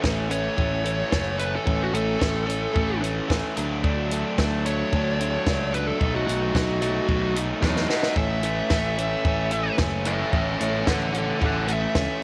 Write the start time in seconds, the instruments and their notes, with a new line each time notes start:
0.02 picked electric bass A1, overdriven electric guitar E3 A3 C#4, kick, snare
0.29 overdriven electric guitar E3 A3 C#4, lead electric guitar C#5, closed hi-hat
0.56 picked electric bass A1, overdriven electric guitar E3 A3 C#4, kick
0.84 overdriven electric guitar E3 A3 C#4, closed hi-hat
1.11 picked electric bass F#1, overdriven electric guitar E3 A3 C#4, kick, snare
1.38 overdriven electric guitar E3 A3 C#4, lead electric guitar B4, closed hi-hat
1.56 lead electric guitar A4
1.65 picked electric bass A1, overdriven electric guitar E3 A3 C#4, kick
1.83 lead electric guitar F#4
1.93 picked electric bass A1, overdriven electric guitar E3 A3 C#4, lead electric guitar A4, closed hi-hat
2.19 picked electric bass A1, overdriven electric guitar E3 A3 C#4, kick, snare
2.46 overdriven electric guitar E3 A3 C#4, closed hi-hat
2.73 picked electric bass A1, overdriven electric guitar E3 A3 C#4, kick
3.01 overdriven electric guitar E3 A3 C#4, closed hi-hat
3.28 picked electric bass A1, overdriven electric guitar E3 A3 C#4, kick, snare
3.56 picked electric bass D2, overdriven electric guitar F#3 A3 D4, closed hi-hat
3.83 overdriven electric guitar F#3 A3 D4, kick
4.11 overdriven electric guitar F#3 A3 D4, closed hi-hat
4.38 picked electric bass D2, overdriven electric guitar F#3 A3 D4, kick, snare
4.66 overdriven electric guitar F#3 A3 D4, lead electric guitar C#5, closed hi-hat
4.93 picked electric bass D2, overdriven electric guitar F#3 A3 D4, kick
5.20 overdriven electric guitar F#3 A3 D4, closed hi-hat
5.47 picked electric bass C#2, overdriven electric guitar F#3 A3 D4, kick, snare
5.73 overdriven electric guitar F#3 A3 D4, lead electric guitar B4, closed hi-hat
5.87 lead electric guitar A4
5.99 picked electric bass B1, overdriven electric guitar F#3 A3 D#4, kick
6.15 lead electric guitar F#4
6.26 picked electric bass B1, overdriven electric guitar F#3 A3 D#4, lead electric guitar F#4, closed hi-hat
6.54 picked electric bass B1, overdriven electric guitar F#3 A3 D#4, kick, snare
6.81 overdriven electric guitar F#3 A3 D#4, closed hi-hat
7.08 picked electric bass B1, overdriven electric guitar F#3 A3 D#4, kick
7.35 overdriven electric guitar F#3 A3 D#4, closed hi-hat
7.62 picked electric bass E2, overdriven electric guitar F#3 A3 D#4, lead electric guitar A4 C#5, kick, snare
7.76 snare
7.89 overdriven electric guitar F#3 A3 D#4, lead electric guitar D#5 F#5, snare
8.03 snare
8.16 picked electric bass A1, overdriven electric guitar E3 A3 C#4, lead electric guitar E5, kick
8.43 overdriven electric guitar E3 A3 C#4, closed hi-hat
8.70 picked electric bass A1, overdriven electric guitar E3 A3 C#4, kick, snare
8.98 overdriven electric guitar E3 A3 C#4, closed hi-hat
9.25 picked electric bass A1, overdriven electric guitar E3 A3 C#4, kick
9.51 overdriven electric guitar E3 A3 C#4, closed hi-hat
9.78 picked electric bass F#1, overdriven electric guitar E3 A3 C#4, kick, snare
10.05 overdriven electric guitar E3 A3 C#4, lead electric guitar C#5 E5, closed hi-hat
10.31 picked electric bass A1, overdriven electric guitar E3 A3 C#4, lead electric guitar C#5 E5, kick
10.59 picked electric bass A1, overdriven electric guitar E3 A3 C#4, lead electric guitar C#5 E5, closed hi-hat
10.87 picked electric bass A1, overdriven electric guitar E3 A3 C#4, lead electric guitar A4 F#5, kick, snare
11.13 overdriven electric guitar E3 A3 C#4, closed hi-hat
11.18 lead electric guitar A4 F#5
11.40 picked electric bass A1, overdriven electric guitar E3 A3 C#4, kick
11.45 lead electric guitar A4 F#5
11.67 overdriven electric guitar E3 A3 C#4, closed hi-hat
11.73 lead electric guitar E5
11.95 picked electric bass C#2, overdriven electric guitar E3 A3 C#4, kick, snare